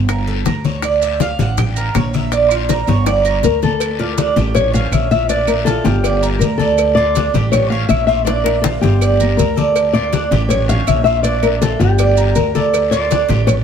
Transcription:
Already playing: G1
0.09 A#4, high bongo, high conga, long guiro, claves, maracas
0.27 A4, high conga
0.45 D2 A#4, high bongo, low bongo, high conga, short guiro, maracas
0.64 C#5, high bongo, high conga, short guiro, maracas
0.82 D5, high bongo, high conga, long guiro, claves, maracas
1.02 E5, high conga, maracas
1.20 F5, high bongo, high conga, short guiro, maracas
1.39 A1 F#5, high conga, short guiro, maracas
1.58 G5, high bongo, high conga, low conga, long guiro, claves, maracas
1.76 A#4, high conga, maracas
1.95 A#1 C#5, high bongo, low bongo, high conga, short guiro, claves, maracas
2.13 E5, high conga, short guiro, maracas
2.32 D5, high bongo, high conga, long guiro, maracas
2.51 F4, high bongo, high conga, claves, maracas
2.69 A#4, high bongo, high conga, short guiro, maracas
2.87 G1 C#5, high bongo, high conga, short guiro, maracas
3.06 D5, high bongo, high conga, long guiro, claves, maracas
3.25 A#4, high conga, maracas
3.43 D2 A#4, low bongo, high conga, short guiro, maracas
3.62 A4, low bongo, high conga, short guiro, maracas
3.80 cowbell, high conga, long guiro, claves, maracas
3.99 F4 D5, cowbell, high conga
4.18 D4, cowbell, high conga, short guiro, maracas
4.36 A1 G4, cowbell, high conga, short guiro, maracas
4.55 C#5, cowbell, high conga, low conga, long guiro, claves, maracas
4.74 C#4 F5, high conga, low conga, maracas
4.91 A#1 E5, cowbell, high conga, short guiro, claves, maracas
5.11 F4 E5, high conga, short guiro, maracas
5.29 D4 D5, cowbell, high conga, long guiro, maracas
5.47 A#4, cowbell, high conga, claves, maracas
5.65 F4 A4, cowbell, high conga, short guiro, maracas
5.84 G1 G4, cowbell, high conga, short guiro, maracas
6.04 D5, cowbell, high conga, long guiro, claves, maracas
6.23 A#4, high conga, maracas
6.39 D2 A#4, cowbell, high conga, short guiro, maracas
6.58 A4 D5, cowbell, high conga, short guiro, maracas
6.78 cowbell, high conga, long guiro, claves, maracas
6.95 F4 D5, cowbell, high conga
7.15 D4, cowbell, high conga, short guiro, maracas
7.34 A1 G4, cowbell, high conga, short guiro, maracas
7.52 C#5, cowbell, high conga, low conga, long guiro, claves, maracas
7.70 C#4 F5, high conga
7.89 A#1 E5, cowbell, high conga, short guiro, claves, maracas
8.07 F4 E5, short guiro, maracas
8.25 D4 D5, cowbell, high bongo, high conga, long guiro, maracas
8.44 A#4, cowbell, high bongo, high conga, claves
8.61 F4 A4, cowbell, high bongo, short guiro, maracas
8.66 high conga
8.81 G1 G4, cowbell, high conga, short guiro, maracas
9.01 D5, cowbell, high conga, long guiro, claves, maracas
9.20 A#4, low bongo, high conga, maracas
9.37 D2 A#4, cowbell, low bongo, high conga, short guiro, maracas
9.56 A4 D5, cowbell, low bongo, high conga, short guiro, maracas
9.76 cowbell, high conga, long guiro, claves, maracas
9.93 F4 D5, cowbell, high conga
10.13 D4, cowbell, high conga, short guiro, maracas
10.31 A1 G4, cowbell, high conga, short guiro, maracas
10.49 C#5, cowbell, high conga, low conga, long guiro, claves, maracas
10.69 C#4 F5, high conga, low conga, maracas
10.87 A#1 E5, cowbell, high conga, short guiro, claves, maracas
11.04 F4 E5, short guiro, maracas
11.23 D4 D5, cowbell, high conga, long guiro, maracas
11.43 A#4, cowbell, high conga, claves, maracas
11.61 F4 A4, cowbell, high conga, short guiro, maracas
11.79 G1 G4, cowbell, high conga, short guiro, maracas
11.99 D5, cowbell, high conga, long guiro, claves, maracas
12.17 A#4, high conga, maracas
12.35 D2 A#4, cowbell, high conga, short guiro, maracas
12.55 A4 D5, cowbell, high conga, short guiro, maracas
12.74 cowbell, high conga, long guiro, claves, maracas
12.91 F4 D5, cowbell, high conga, maracas
13.11 D4, cowbell, high conga, short guiro, maracas
13.29 A1 G4, cowbell, high conga, short guiro, maracas
13.47 C#5, cowbell, high conga, low conga, long guiro, claves, maracas

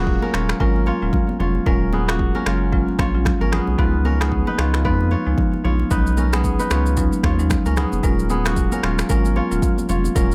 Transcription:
Already playing: D#1 F#3 G#3 A#3 C#4 F4 F#4 G#4
0.07 kick
0.22 C#4 A#4, high conga
0.33 D#1 F#3 G#3 C#4 F4 C#5, finger snap, cross-stick
0.49 finger snap, cross-stick
0.60 G#1 F#3 G#3 C#4 F4 A#4, kick
0.76 high conga
0.86 F4 C#5, high conga
1.02 D#1 F#3 G#3 C#4 F4
1.13 kick, low conga
1.29 high conga
1.39 F1 F#3 G#3 C#4 F4 C#5, low conga
1.55 high conga
1.66 D#1 F#3 G#3 C#4 F4 A#4, kick, low conga
1.93 B3 G#4, high conga
2.08 F#3 G#3 A#3 C#4 F4 F#4, finger snap, cross-stick, high conga
2.19 kick
2.35 C#4 A#4, high conga
2.46 F#1 F#3 G#3 C#4 F4 C#5, finger snap, cross-stick
2.72 F#3 G#3 C#4 F4, kick
2.88 high conga
2.99 A#1 F4 C#5, finger snap, kick, cross-stick, high conga
3.14 F#3 G#3 C#4 F4
3.25 finger snap, kick, cross-stick, low conga
3.41 G#1 C#4 A#4, high conga
3.52 F#3 G#3 B3 C#4 F4 G#4, finger snap, cross-stick, low conga
3.67 B1, high conga
3.78 C#2 F3 G#3 B3 D#4 F4 B4, kick, low conga
4.05 C#4 A#4, high conga
4.20 F3 G#3 B3 D#4 G#4, finger snap, cross-stick, high conga
4.32 kick
4.47 D#4 B4, high conga
4.58 C#2 F3 G#3 B3 D#4 F4 C#5, finger snap, cross-stick
4.74 finger snap, cross-stick
4.84 F2 F3 G#3 B3 D#4 F4 B4, kick
5.01 high conga
5.11 F4 C#5, high conga
5.26 C#2 F3 G#3 B3 D#4
5.38 kick, low conga
5.54 high conga
5.64 A#1 F3 G#3 B3 D#4 F4 C#5, low conga
5.80 high conga
5.91 B1 F#3 G#3 C#4 D#4 B4, kick, low conga, shaker
6.07 shaker
6.17 C#4 A#4, high conga, shaker
6.32 F#3 G#3 B3 C#4 D#4 G#4, finger snap, cross-stick, high conga, shaker
6.44 kick, shaker
6.59 D#4 B4, high conga, shaker
6.70 C#2 F#3 G#3 C#4 D#4 F4 C#5, finger snap, cross-stick, shaker
6.86 shaker
6.97 F#3 G#3 C#4 D#4, kick, shaker
7.13 high conga, shaker
7.23 D#2 F4 C#5, finger snap, kick, cross-stick, high conga
7.39 F#3 G#3 C#4 D#4, shaker
7.50 finger snap, kick, cross-stick, low conga, shaker
7.66 C#2 C#4 A#4, high conga, shaker
7.76 F#3 G#3 B3 C#4 D#4 G#4, finger snap, cross-stick, low conga, shaker
7.92 F1, high conga, shaker
8.03 D#1 F#3 G#3 C#4 F4 A#4, kick, low conga, shaker
8.19 shaker
8.30 B3 G#4, high conga, shaker
8.45 F#3 G#3 A#3 C#4 F4 F#4, finger snap, cross-stick, high conga, shaker
8.56 kick, shaker
8.72 C#4 A#4, high conga, shaker
8.83 D#1 F#3 G#3 C#4 F4 C#5, finger snap, cross-stick
8.99 finger snap, cross-stick, shaker
9.09 G#1 F#3 G#3 C#4 F4 A#4, kick, shaker
9.25 high conga, shaker
9.36 F4 C#5, high conga
9.51 D#1 F#3 G#3 C#4 F4, shaker
9.62 kick, low conga, shaker
9.78 high conga, shaker
9.89 F1 F#3 G#3 C#4 F4 C#5, low conga, shaker
10.04 high conga, shaker
10.15 D#1 F#3 G#3 C#4 F4 A#4, kick, low conga, shaker
10.32 shaker

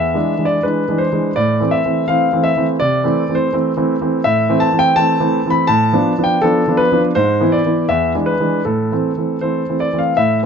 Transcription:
Already playing: E2 E5
0.14 E3 G#3 D4
0.38 E3 G#3 D4
0.45 D5
0.63 E3 G#3 D4 B4
0.88 E3 G#3 D4
0.98 C5
1.12 E3 G#3 D4
1.36 A2 D5
1.60 E3 A3 C4
1.71 E5
1.85 E3 A3 C4
2.08 E3 A3 C4 F5
2.33 E3 A3 C4
2.44 E5
2.57 E3 A3 C4
2.80 C3 D5
3.04 E3 A3 C4
3.29 E3 A3 C4
3.35 C5
3.53 E3 A3 C4
3.77 E3 A3 C4
4.01 E3 A3 C4
4.24 A2 E5
4.49 E3 A3 C4
4.60 A5
4.73 E3 A3 C4
4.79 G5
4.96 E3 A3 C4 A5
5.20 E3 A3 C4
5.46 E3 A3 C4
5.50 B5
5.67 A2 A5
5.93 F3 B3 D4
6.18 F3 B3 D4
6.24 G5
6.42 F3 B3 D4 A4
6.68 F3 B3 D4
6.77 B4
6.92 F3 B3 D4
7.15 G#2 C5
7.41 E3 B3 E4
7.52 D5
7.66 E3 B3 E4
7.89 E2 E5
8.15 E3 G#3 D4
8.26 B4
8.40 E3 G#3 D4
8.65 A2 A4
8.92 E3 A3 C4
9.17 E3 A3 C4
9.41 E3 A3 C4 C5
9.69 E3 A3 C4
9.80 D5
9.93 E3 A3 C4
9.98 F5
10.17 A2 E5

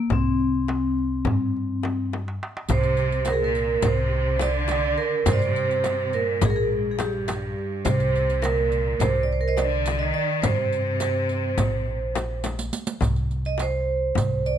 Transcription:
Already playing: A#3
0.10 C2 C4, frame drum, darbuka dum
0.27 darbuka ka
0.40 darbuka ka
0.55 darbuka ka
0.68 darbuka tek, frame drum
0.98 darbuka ka
1.25 G2, frame drum, darbuka dum
1.57 darbuka ka
1.83 darbuka tek, frame drum
2.13 darbuka tek, frame drum
2.28 darbuka ka
2.43 darbuka tek
2.57 darbuka ka
2.69 C2 C3 C5, riq, frame drum, darbuka dum
2.83 riq
2.97 riq, darbuka ka
3.12 riq, darbuka ka
3.25 A#2, riq, darbuka tek, frame drum
3.29 G#4 A#4
3.40 A#2
3.44 A#4
3.55 riq, darbuka ka
3.82 C2 C3 C5, riq, frame drum, darbuka dum
4.13 darbuka ka
4.39 D3 D5, riq, darbuka tek, frame drum
4.68 riq, darbuka tek, frame drum
4.98 A#4, darbuka ka
5.24 G2 D3 C5, riq, frame drum, darbuka dum
5.29 C3 D5
5.39 C5, riq
5.45 C3
5.56 riq
5.71 riq, darbuka ka
5.84 riq, darbuka tek, frame drum
6.13 A#2 A#4, riq
6.41 A#1 G#2 G#4, riq, frame drum, darbuka dum
6.50 A#4
6.55 G#2 G#4
6.72 darbuka ka
6.91 G#4
6.99 G2 G4, riq, darbuka tek, frame drum
7.28 riq, darbuka tek, frame drum
7.58 darbuka ka
7.85 C2 C3 C5, riq, frame drum, darbuka dum
8.00 riq
8.16 riq, darbuka ka
8.30 riq, darbuka ka
8.42 A#2 A#4, riq, darbuka tek, frame drum
8.72 riq, darbuka ka
9.00 C2 C3 C5, riq, frame drum, darbuka dum
9.23 D5
9.31 C5, darbuka ka
9.41 A#4
9.48 C5 D#5
9.57 D3 D5, riq, darbuka tek, frame drum
9.86 riq, darbuka tek, frame drum
9.99 D#3 D#5
10.14 D5, darbuka ka
10.42 G2 C3 C5, riq, frame drum, darbuka dum
10.59 darbuka ka
10.73 riq
10.87 darbuka ka
11.00 riq, darbuka tek, frame drum
11.29 riq, darbuka ka
11.58 A#1, riq, frame drum, darbuka dum
11.89 darbuka ka
12.15 riq, darbuka tek, frame drum
12.44 riq, darbuka tek, frame drum
12.59 riq
12.73 riq, darbuka ka
12.87 riq
13.01 C2, riq, frame drum, darbuka dum
13.16 riq
13.31 riq, darbuka ka
13.45 D#5, riq
13.58 riq, darbuka tek, frame drum
13.62 C5
14.15 C2, riq, frame drum, darbuka dum
14.46 D5, riq

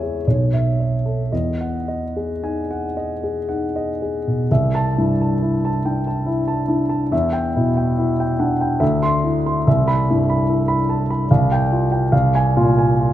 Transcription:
Already playing: E2 G#4 C#5 E5 G#5
0.03 G#4
0.27 B1 C#5
0.53 E5
0.80 C#5
1.06 A4
1.32 E2 D#5
1.61 F#5
1.88 D#5
2.17 G#4
2.43 D#4 G#5
2.71 F#5
2.97 D#5
3.24 G#4
3.49 D#4 F#5
3.76 D#5
4.02 G#4
4.27 B2
4.51 C2 E5
4.75 A5
4.98 G2 E4
5.22 A5
5.42 E4
5.65 A5
5.85 D4 G5
6.07 A5
6.26 E4
6.48 A5
6.68 D4 E4
6.89 A5
7.12 E2 E5
7.33 G5
7.56 B2 E4
7.77 G5
7.98 E4
8.20 G5
8.39 D4 F#5
8.61 G5
8.80 D2 E5
9.03 C6
9.24 E4
9.46 C6
9.67 C2 E5
9.88 B5
10.10 G2 E4
10.30 B5
10.49 E4
10.68 B5
10.89 A5
11.11 B5
11.31 C2 F5
11.52 G5
11.72 F4
11.92 G5
12.12 C2 F5
12.35 G#5
12.57 A#2 F4
12.78 G#5
13.00 F4

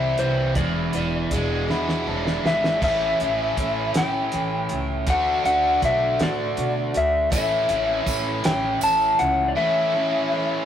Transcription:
Already playing: C2 C3 E3 G3 C4 E4 E5
0.18 C2 E3 G3 C4 E4 C5, closed hi-hat
0.55 E1 E2 B2 E3 G#3 D4 E4 D5, kick, closed hi-hat
0.93 E1 E3 G#3 D4 E4, closed hi-hat
1.31 E1 E3 G#3 D4 E4, kick, closed hi-hat
1.68 E2 B2 E3 G#3 D4 E4, snare
1.89 snare
2.06 E1 E3 G#3 D4 E4
2.27 snare
2.43 G#1 E3 G#3 D4 E4 E5, snare
2.64 snare
2.81 A1 A2 E3 A3 C#4 E4 E5, kick, crash
3.19 A1 A3 C#4 E4, closed hi-hat
3.57 A1 E3 A3 C#4 E4, kick, closed hi-hat
3.94 A1 A2 E3 A3 C#4 E4 G5, snare, closed hi-hat
4.32 A1 E3 A3 C#4 E4, closed hi-hat
4.69 C#2 A3 C#4 E4, closed hi-hat
5.07 D2 D3 A3 D4 F#4 F#5, kick, closed hi-hat
5.45 D2 A3 D4 F#4 F#5, closed hi-hat
5.82 B1 D3 A3 D4 F#4 E5, kick, closed hi-hat
6.20 A2 D3 A3 D4 F#4 D5, snare, closed hi-hat
6.56 B2 D3 A3 D4 F#4, closed hi-hat
6.94 D2 A3 D4 F#4 E5, closed hi-hat
7.30 A1 A2 E3 A3 C#4 E4 E5, kick, closed hi-hat, tambourine
7.69 A1 A3 C#4 E4, closed hi-hat
8.06 A1 E3 A3 C#4 E4, kick, closed hi-hat, tambourine
8.44 A1 A2 E3 A3 C#4 E4 G5, snare, closed hi-hat
8.81 A1 E3 A3 C#4 E4 A5, closed hi-hat, tambourine
9.00 tambourine
9.19 C#2 A3 C#4 E4 F#5, closed hi-hat
9.48 D5
9.56 A2 E3 A3 C#4 E4 E5
9.93 A3 C#4 E4
10.30 E3 A3 C#4 E4

